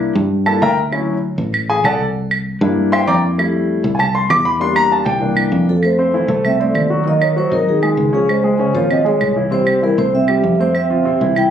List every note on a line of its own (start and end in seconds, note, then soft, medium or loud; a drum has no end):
0.00 0.11 C2 medium
0.00 0.14 A#3 medium
0.00 0.14 D4 medium
0.00 0.14 E4 medium
0.15 0.59 G2 loud
0.46 0.60 A#3 soft
0.46 0.60 D4 soft
0.46 0.60 E4 medium
0.46 0.62 A4 medium
0.46 0.61 A5 medium
0.46 claves medium
0.62 1.33 D2 medium
0.62 0.77 A#4 medium
0.62 0.77 E5 medium
0.62 0.77 G5 medium
0.62 0.77 A#5 medium
0.92 1.13 F#3 medium
0.92 1.13 C#4 soft
0.92 1.13 E4 medium
0.92 claves medium
1.38 1.81 A1 medium
1.54 claves medium
1.70 1.84 G#4 medium
1.70 1.84 G#5 medium
1.84 2.55 C2 medium
1.84 2.00 A4 medium
1.84 2.00 D5 medium
1.84 2.00 F#5 medium
1.84 2.00 A5 medium
1.84 claves medium
2.31 claves medium
2.61 3.04 G2 medium
2.61 3.34 A#3 medium
2.61 3.34 D4 medium
2.61 3.35 E4 medium
2.92 3.07 C5 medium
2.92 3.07 E5 medium
2.92 3.07 G5 medium
2.92 3.07 C6 loud
2.92 claves medium
3.07 3.78 F2 medium
3.07 3.17 D5 medium
3.07 3.17 G5 medium
3.07 3.17 A#5 medium
3.07 3.17 D6 loud
3.38 3.82 G3 medium
3.38 3.82 A3 soft
3.38 3.82 E4 medium
3.38 claves medium
3.84 4.27 C2 medium
3.95 3.97 G#5 medium
3.99 4.14 A5 loud
3.99 claves medium
4.15 4.29 C6 medium
4.30 5.01 E2 loud
4.30 4.45 D6 loud
4.30 claves medium
4.45 4.60 B5 medium
4.60 5.04 G3 medium
4.60 5.04 A#3 medium
4.60 5.04 D4 medium
4.60 4.76 C6 loud
4.76 4.91 A#5 loud
4.76 claves medium
4.92 5.06 A5 medium
5.05 5.49 C2 loud
5.05 5.71 G5 medium
5.20 5.64 E3 medium
5.20 5.65 A#3 medium
5.20 5.65 D4 medium
5.37 claves medium
5.52 6.23 F2 medium
5.69 5.83 F3 medium
5.69 5.84 A4 medium
5.83 6.41 A3 medium
5.83 6.41 C5 medium
5.83 claves medium
5.99 6.11 C4 medium
5.99 6.11 C5 medium
6.14 6.26 E3 medium
6.14 6.27 E4 medium
6.28 6.72 C2 medium
6.28 6.54 A3 medium
6.28 6.54 A4 medium
6.45 6.59 C4 medium
6.45 6.59 E5 medium
6.45 claves medium
6.60 6.89 A3 medium
6.60 6.85 C4 medium
6.60 6.85 C5 medium
6.60 6.89 D5 medium
6.75 7.46 D#2 medium
6.75 claves medium
6.90 7.03 F#3 medium
6.90 7.03 F#4 medium
7.05 7.30 D#3 medium
7.05 7.31 D#4 medium
7.05 7.14 D#5 medium
7.09 7.15 A#3 medium
7.22 7.37 A#3 medium
7.22 7.36 C#5 medium
7.22 claves medium
7.36 7.49 F#3 medium
7.36 7.45 F#3 medium
7.36 7.49 F#4 medium
7.36 7.45 C5 medium
7.51 7.95 G#1 medium
7.51 7.67 F#3 medium
7.51 7.77 D#4 medium
7.51 7.68 A#4 medium
7.51 7.77 D#5 medium
7.68 8.11 D#3 medium
7.68 8.11 G#4 medium
7.83 8.08 G#3 medium
7.83 8.08 G#4 medium
7.83 claves medium
7.97 8.69 C#2 medium
8.13 8.28 F3 medium
8.13 8.39 C#4 medium
8.13 8.28 G#4 medium
8.13 8.38 C#5 medium
8.29 8.72 G#3 medium
8.29 8.77 C5 medium
8.29 claves medium
8.43 8.56 G#3 medium
8.43 8.57 G#4 medium
8.59 8.72 C#3 medium
8.59 8.72 C#4 medium
8.74 9.18 G#1 medium
8.74 9.00 F3 medium
8.74 8.90 A#3 medium
8.74 9.00 F4 medium
8.74 8.90 C#5 medium
8.90 9.05 C4 medium
8.90 9.07 D#5 medium
8.90 claves medium
9.04 9.30 G#3 medium
9.04 9.35 G#3 medium
9.04 9.30 G#4 medium
9.04 9.35 C#5 medium
9.21 9.93 C2 medium
9.21 claves medium
9.36 9.49 E3 medium
9.36 9.49 E4 medium
9.51 9.77 C3 medium
9.51 9.81 G3 medium
9.51 9.77 C4 medium
9.51 9.81 C5 medium
9.67 claves medium
9.82 9.95 E3 medium
9.82 9.97 G3 medium
9.82 9.96 E4 medium
9.82 9.99 A#4 medium
9.98 10.41 C2 medium
9.98 10.12 A3 medium
9.98 10.23 C4 medium
9.98 10.24 C5 medium
9.98 10.13 C5 medium
10.14 10.57 C4 medium
10.14 10.62 E5 medium
10.28 10.54 G3 medium
10.28 10.54 G4 medium
10.28 claves medium
10.44 11.16 F2 medium
10.59 10.67 A3 medium
10.59 10.85 C4 medium
10.59 10.85 C5 medium
10.59 10.68 C5 medium
10.75 11.33 C4 medium
10.75 11.39 E5 medium
10.75 claves medium
10.90 11.03 F3 medium
10.90 11.03 F4 medium
11.05 11.18 C3 medium
11.05 11.18 C4 medium
11.21 11.50 C2 medium
11.21 11.46 E3 medium
11.21 11.47 E4 medium
11.36 11.50 E4 medium
11.36 11.50 G5 medium
11.36 claves medium